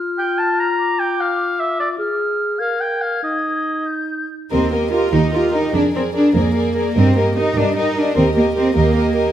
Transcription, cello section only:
4.52 4.71 C4 medium
4.72 4.92 A#3 soft
4.92 5.13 F4 medium
5.13 5.34 D#4 medium
5.33 5.54 F4 medium
5.53 5.74 D#4 medium
5.74 5.82 D4 medium
5.95 6.03 C4 soft
6.15 6.35 D4 medium
6.35 6.94 A#3 medium
6.96 7.16 C4 medium
7.17 7.36 A#3 medium
7.36 7.56 D#4 medium
7.56 7.76 D4 medium
7.76 7.96 D#4 medium
7.97 8.16 D4 medium
8.16 8.23 C4 medium
8.36 8.44 A#3 medium
8.57 8.75 C4 medium
8.76 9.32 A#3 medium

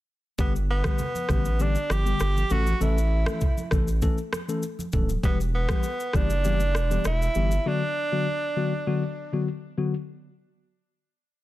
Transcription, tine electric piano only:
0.38 0.54 D3 medium
0.38 0.54 G3 medium
0.38 0.54 B3 medium
0.38 0.54 G4 loud
0.85 0.99 D3 medium
0.85 0.99 G3 medium
0.85 0.99 B3 medium
0.85 0.99 G4 medium
1.29 1.45 D3 medium
1.29 1.45 G3 medium
1.29 1.45 B3 medium
1.29 1.45 G4 medium
1.60 1.75 D3 medium
1.60 1.75 G3 medium
1.60 1.75 B3 medium
1.60 1.75 G4 loud
2.05 2.20 D3 medium
2.05 2.20 G3 medium
2.05 2.20 B3 medium
2.05 2.20 G4 medium
2.50 2.66 E3 medium
2.50 2.66 A3 medium
2.50 2.66 C#4 medium
2.50 2.66 A4 medium
2.81 2.96 E3 medium
2.81 2.96 A3 medium
2.81 2.96 C#4 medium
2.81 2.96 A4 loud
3.27 3.41 E3 medium
3.27 3.41 A3 medium
3.27 3.41 C#4 medium
3.27 3.41 A4 medium
3.72 3.87 E3 medium
3.72 3.87 A3 medium
3.72 3.87 C#4 medium
3.72 3.87 A4 medium
4.02 4.17 E3 medium
4.02 4.17 A3 medium
4.02 4.18 C#4 medium
4.02 4.18 A4 loud
4.48 4.62 E3 medium
4.48 4.63 A3 medium
4.48 4.63 C#4 medium
4.48 4.63 A4 medium
4.93 5.08 E3 medium
4.93 5.09 A3 medium
4.93 5.09 C#4 medium
4.93 5.09 A4 medium
5.23 5.39 E3 loud
5.23 5.39 G3 medium
5.23 5.39 B3 medium
5.23 5.39 G4 loud
5.69 5.84 E3 medium
5.69 5.84 G3 medium
5.69 5.84 B3 medium
5.69 5.84 G4 medium
6.14 6.29 E3 medium
6.14 6.30 G3 medium
6.14 6.30 B3 medium
6.14 6.30 G4 medium
6.44 6.60 E3 medium
6.44 6.60 G3 medium
6.44 6.60 B3 medium
6.44 6.60 G4 loud
6.91 7.05 E3 medium
6.91 7.05 G3 medium
6.91 7.05 B3 medium
6.91 7.05 G4 medium
7.35 7.51 E3 medium
7.35 7.51 G3 medium
7.35 7.51 B3 medium
7.35 7.51 G4 medium
7.66 7.81 D3 medium
7.66 7.81 F#3 medium
7.66 7.81 B3 medium
7.66 7.81 F#4 loud
8.12 8.26 D3 medium
8.12 8.26 F#3 medium
8.12 8.26 B3 medium
8.12 8.26 F#4 medium
8.57 8.72 D3 medium
8.57 8.72 F#3 medium
8.57 8.72 B3 medium
8.57 8.72 F#4 medium
8.87 9.02 D3 medium
8.87 9.02 F#3 medium
8.87 9.02 B3 medium
8.87 9.02 F#4 loud
9.33 9.47 D3 medium
9.33 9.47 F#3 medium
9.33 9.47 B3 medium
9.33 9.47 F#4 medium
9.78 9.93 D3 medium
9.78 9.93 F#3 medium
9.78 9.93 B3 medium
9.78 9.93 F#4 medium

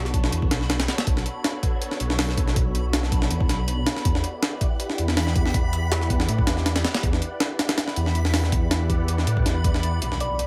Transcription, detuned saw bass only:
0.00 0.31 B1 medium
0.32 0.49 E2 medium
0.51 0.87 B1 loud
1.07 1.24 B1 loud
2.00 3.29 B1 medium
3.31 3.48 E2 medium
3.49 3.85 B1 loud
4.05 4.22 E2 loud
4.98 6.27 E2 medium
6.29 6.46 A2 medium
6.47 6.83 E2 loud
7.03 7.20 E2 loud
7.97 9.26 E2 medium
9.27 9.44 A2 medium
9.46 9.81 E2 loud
9.83 10.00 E2 medium
10.02 10.47 B1 medium

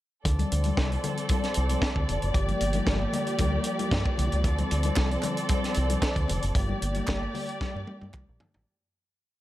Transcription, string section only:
0.25 8.62 F3 medium
0.25 2.32 C4 medium
0.25 2.32 A4 medium
0.25 6.51 D5 medium
2.34 4.42 A#3 medium
2.34 4.42 G4 medium
4.44 6.53 C4 medium
4.44 6.53 A4 medium
6.55 8.65 A#3 medium
6.55 8.65 G4 medium
6.55 8.65 D5 medium

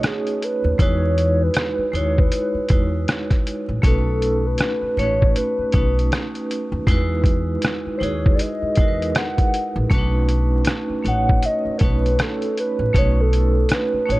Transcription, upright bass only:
0.64 0.78 D#2 medium
0.79 1.47 E2 loud
1.79 muted upright bass stroke soft
1.93 2.27 D#2 medium
2.54 muted upright bass stroke soft
2.70 3.04 E2 medium
3.69 3.82 A1 medium
3.83 4.51 B1 loud
4.82 muted upright bass stroke soft
4.97 5.31 A1 medium
5.58 muted upright bass stroke soft
5.74 6.07 B1 medium
6.72 6.85 D#2 medium
6.87 7.55 E2 loud
7.86 muted upright bass stroke soft
8.01 8.35 D#2 medium
8.62 muted upright bass stroke soft
8.78 9.11 E2 medium
9.76 9.89 A1 loud
9.91 10.59 B1 loud
10.89 muted upright bass stroke soft
11.04 11.39 A1 loud
11.65 muted upright bass stroke soft
11.81 12.15 B1 medium
12.79 12.93 A1 medium
12.95 13.63 B1 loud
13.94 muted upright bass stroke soft
14.09 14.20 A1 medium

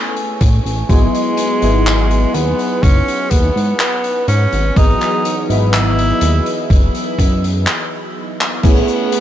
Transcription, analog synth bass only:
0.41 0.60 A2 loud
0.66 0.84 A1 medium
0.89 1.08 G#1 loud
1.62 2.26 G#1 medium
2.35 2.54 D#2 medium
2.83 3.02 F#1 medium
3.31 3.50 D#2 medium
3.56 3.74 G#2 medium
4.28 4.47 G#2 loud
4.53 4.71 G#1 medium
4.76 4.95 G#1 loud
5.50 6.13 G#1 medium
6.22 6.41 D#2 medium
6.70 6.89 F#1 medium
7.18 7.67 F#2 medium
8.64 8.83 A1 loud

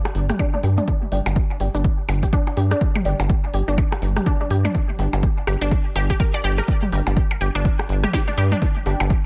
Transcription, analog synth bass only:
0.15 0.31 G1 medium
0.63 0.80 G2 medium
1.12 1.20 G1 loud
1.26 1.39 G1 medium
1.60 1.69 G1 medium
1.74 1.87 G1 medium
2.09 2.25 G1 medium
2.57 2.73 G2 medium
3.05 3.14 G1 loud
3.20 3.33 G1 loud
3.54 3.62 G1 medium
3.68 3.81 G1 medium
4.02 4.18 G1 medium
4.50 4.67 G2 medium
4.99 5.08 G1 loud
5.13 5.26 G1 medium
5.47 5.56 G1 medium
5.61 5.74 G1 medium
5.96 6.12 G1 medium
6.44 6.60 G1 loud
6.92 7.01 G1 loud
7.07 7.20 G1 loud
7.41 7.50 G1 medium
7.55 7.68 G1 medium
7.89 8.06 G1 medium
8.38 8.54 G2 medium
8.86 8.95 G1 loud
9.00 9.13 G1 loud

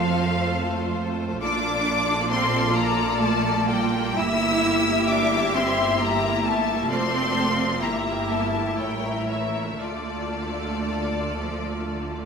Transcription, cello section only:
0.00 0.98 F3 medium
1.40 2.24 D4 medium
2.31 2.74 C4 medium
2.74 3.19 A#3 medium
3.19 3.68 A3 medium
3.68 4.17 G3 medium
4.17 5.09 E4 medium
5.10 5.54 D4 medium
5.55 5.99 C4 medium
5.99 6.43 A#3 medium
6.44 6.88 A3 medium
6.89 7.78 C4 medium
7.80 8.27 A#3 medium
8.27 8.76 A3 soft
8.77 9.27 G3 medium
9.26 9.79 E3 soft
9.77 11.35 D3 soft
11.39 11.88 F3 soft
11.92 12.25 D3 medium

